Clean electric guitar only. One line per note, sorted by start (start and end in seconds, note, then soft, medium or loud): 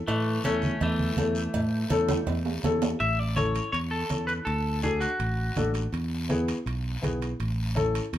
0.08 0.42 E3 medium
0.08 0.42 A3 medium
0.45 0.79 A3 medium
0.45 0.82 C#4 loud
0.82 2.60 E3 medium
0.82 2.60 A3 medium
3.00 3.19 E5 medium
3.19 3.36 D5 medium
3.36 3.71 C#5 medium
3.72 3.78 C#5 medium
3.91 4.25 A4 medium
4.27 4.32 B4 medium
4.45 4.80 A4 medium
4.84 5.00 G#4 medium
5.00 5.70 F#4 medium